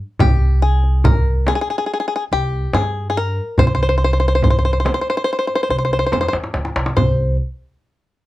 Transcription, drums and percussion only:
0.19 tombak dum medium
0.19 frame drum medium
0.62 tombak ka soft
0.83 tombak ka soft
1.04 tombak dum medium
1.04 frame drum medium
1.47 tombak tek medium
1.47 frame drum medium
1.68 tombak ka soft
2.73 tombak tek medium
2.73 frame drum medium
3.58 tombak dum medium
3.58 frame drum medium
4.01 tombak ka soft
4.42 frame drum medium
4.42 tombak dum medium
4.85 tombak tek medium
4.85 frame drum medium
5.07 tombak ka soft
5.49 tombak ka soft
5.71 tombak ka soft
6.12 tombak tek medium
6.12 frame drum medium
6.23 tombak ka medium
6.33 tombak tek medium
6.44 tombak ka medium
6.54 tombak tek medium
6.65 tombak ka medium
6.76 tombak tek medium
6.86 tombak ka medium
6.97 tombak dum medium
6.97 frame drum medium

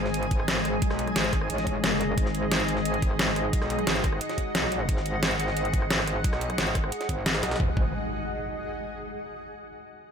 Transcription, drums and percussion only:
0.06 snare soft
0.14 closed hi-hat medium
0.23 closed hi-hat soft
0.31 kick loud
0.31 closed hi-hat medium
0.40 cross-stick soft
0.48 snare loud
0.48 closed hi-hat medium
0.48 open hi-hat medium
0.57 cross-stick medium
0.57 snare medium
0.65 cross-stick soft
0.65 closed hi-hat medium
0.82 kick loud
0.82 closed hi-hat medium
0.90 cross-stick soft
0.90 snare soft
0.99 closed hi-hat medium
1.07 cross-stick soft
1.07 closed hi-hat soft
1.16 snare loud
1.16 closed hi-hat loud
1.16 closed hi-hat medium
1.24 snare medium
1.24 closed hi-hat soft
1.33 kick loud
1.33 cross-stick soft
1.33 closed hi-hat medium
1.41 cross-stick soft
1.50 closed hi-hat medium
1.58 snare medium
1.58 closed hi-hat soft
1.67 kick medium
1.67 closed hi-hat medium
1.84 snare loud
1.84 closed hi-hat medium
1.92 snare soft
2.01 closed hi-hat medium
2.18 kick loud
2.18 closed hi-hat medium
2.26 snare soft
2.35 closed hi-hat medium
2.51 snare loud
2.51 closed hi-hat medium
2.60 snare soft
2.60 closed hi-hat soft
2.68 closed hi-hat medium
2.77 snare soft
2.85 closed hi-hat medium
2.94 closed hi-hat soft
3.02 kick loud
3.02 closed hi-hat medium
3.11 cross-stick soft
3.19 snare loud
3.19 closed hi-hat medium
3.19 open hi-hat medium
3.28 cross-stick soft
3.28 snare medium
3.36 cross-stick soft
3.36 closed hi-hat medium
3.53 kick loud
3.53 closed hi-hat medium
3.62 cross-stick soft
3.62 snare soft
3.70 closed hi-hat medium
3.79 cross-stick soft
3.79 closed hi-hat soft
3.87 snare loud
3.87 closed hi-hat medium
3.96 snare medium
3.96 closed hi-hat soft
4.04 kick loud
4.04 cross-stick soft
4.04 closed hi-hat medium
4.12 cross-stick soft
4.21 closed hi-hat medium
4.29 snare medium
4.29 closed hi-hat soft
4.38 kick medium
4.38 closed hi-hat medium
4.55 snare loud
4.55 closed hi-hat medium
4.63 snare soft
4.72 closed hi-hat medium
4.89 kick loud
4.89 closed hi-hat medium
4.97 snare soft
5.06 closed hi-hat medium
5.23 snare loud
5.23 closed hi-hat medium
5.23 closed hi-hat loud
5.31 snare soft
5.31 closed hi-hat soft
5.40 closed hi-hat medium
5.48 snare soft
5.57 closed hi-hat medium
5.65 closed hi-hat soft
5.73 kick loud
5.73 closed hi-hat medium
5.82 cross-stick soft
5.90 snare loud
5.90 closed hi-hat loud
5.90 open hi-hat medium
5.99 cross-stick medium
5.99 snare medium
6.07 cross-stick soft
6.07 closed hi-hat medium
6.24 kick loud
6.24 closed hi-hat medium
6.24 closed hi-hat loud
6.33 cross-stick soft
6.33 snare soft
6.41 closed hi-hat medium
6.50 cross-stick soft
6.50 closed hi-hat soft
6.58 snare loud
6.58 closed hi-hat medium
6.67 snare medium
6.67 closed hi-hat soft
6.75 kick loud
6.75 cross-stick soft
6.75 closed hi-hat medium
6.84 cross-stick soft
6.92 closed hi-hat medium
7.01 snare medium
7.01 closed hi-hat soft
7.09 kick medium
7.09 closed hi-hat medium
7.26 snare loud
7.26 closed hi-hat medium
7.26 closed hi-hat loud
7.35 snare loud
7.35 closed hi-hat medium
7.43 snare loud
7.43 closed hi-hat medium
7.51 snare medium
7.51 closed hi-hat medium
7.56 snare medium
7.56 closed hi-hat medium
7.60 kick loud
7.77 kick loud

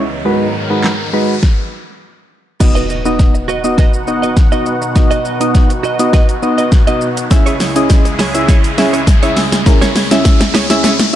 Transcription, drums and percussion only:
0.84 snare medium
0.84 clap loud
1.43 kick loud
1.43 snare medium
2.60 kick loud
2.60 snare medium
2.60 crash medium
2.60 shaker medium
2.76 shaker medium
2.90 shaker medium
3.06 shaker medium
3.19 kick loud
3.19 snare medium
3.19 shaker medium
3.35 shaker soft
3.49 shaker medium
3.64 shaker medium
3.78 kick loud
3.78 snare medium
3.78 shaker medium
3.94 shaker medium
4.07 shaker medium
4.23 shaker medium
4.37 kick loud
4.37 snare medium
4.37 shaker medium
4.52 shaker medium
4.66 shaker medium
4.82 shaker medium
4.96 kick loud
4.96 snare medium
4.96 shaker medium
5.11 closed hi-hat medium
5.11 shaker medium
5.25 shaker medium
5.41 closed hi-hat medium
5.41 shaker medium
5.55 kick loud
5.55 snare medium
5.55 shaker medium
5.70 closed hi-hat medium
5.70 shaker medium
5.84 shaker soft
5.99 closed hi-hat medium
5.99 shaker medium
6.13 kick loud
6.13 snare medium
6.13 shaker medium
6.29 closed hi-hat medium
6.29 shaker medium
6.43 shaker medium
6.58 closed hi-hat medium
6.58 shaker medium
6.72 kick loud
6.72 snare medium
6.72 shaker medium
6.87 closed hi-hat medium
6.87 shaker medium
7.01 shaker medium
7.17 closed hi-hat medium
7.17 shaker medium
7.31 kick loud
7.31 snare medium
7.31 shaker medium
7.47 closed hi-hat medium
7.47 shaker medium
7.60 snare medium
7.60 open hi-hat medium
7.60 shaker medium
7.76 closed hi-hat medium
7.76 shaker medium
7.76 shaker soft
7.90 kick loud
7.90 snare medium
7.90 shaker medium
8.05 closed hi-hat medium
8.05 shaker soft
8.05 shaker medium
8.19 snare medium
8.19 open hi-hat medium
8.19 shaker medium
8.35 closed hi-hat medium
8.35 shaker medium
8.49 kick loud
8.49 snare loud
8.49 shaker medium
8.64 closed hi-hat medium
8.64 shaker soft
8.64 shaker medium
8.78 snare loud
8.78 open hi-hat medium
8.78 shaker medium
8.94 closed hi-hat medium
8.94 shaker medium
9.07 kick loud
9.07 snare loud
9.07 shaker medium
9.23 closed hi-hat medium
9.23 shaker medium
9.37 snare loud
9.37 open hi-hat medium
9.37 shaker medium
9.52 snare loud
9.52 closed hi-hat medium
9.52 shaker medium
9.66 kick loud
9.66 snare loud
9.66 shaker medium
9.82 snare loud
9.82 closed hi-hat medium
9.82 shaker medium
9.96 snare loud
9.96 open hi-hat medium
9.96 shaker medium
10.11 snare loud
10.11 closed hi-hat medium
10.11 shaker medium
10.11 shaker soft
10.25 kick loud
10.25 snare loud
10.25 shaker medium
10.41 snare loud
10.41 closed hi-hat medium
10.41 shaker medium
10.55 snare loud
10.55 open hi-hat medium
10.55 shaker medium
10.70 snare loud
10.70 closed hi-hat medium
10.70 shaker medium
10.84 snare loud
10.84 shaker medium
10.99 snare loud
10.99 closed hi-hat medium
10.99 shaker medium
10.99 shaker soft

